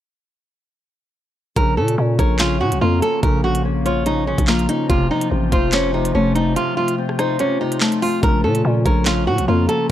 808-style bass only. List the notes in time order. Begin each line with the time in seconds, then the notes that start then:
1.56 A#1
1.77 A#2
1.98 A#2
2.19 A#1
2.61 A#2
2.72 A#1
2.81 F2
3.23 A#1
4.38 A#1
4.90 F1
5.31 A1
5.52 F1
6.15 F1
8.23 A#1
8.44 A#2
8.65 A#2
8.86 A#1
9.27 A#2
9.38 A#1
9.48 F2